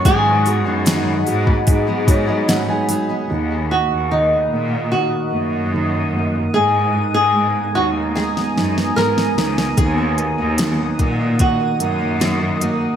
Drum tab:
HH |o-o-o-o-o-o-o-o-|----------------|----------------|x-x-x-x-x-x-x-x-|
SD |----o-------o---|----------------|--------oooooooo|----o-------o---|
BD |o------oo-o-----|----------------|----------------|o-----o-o-------|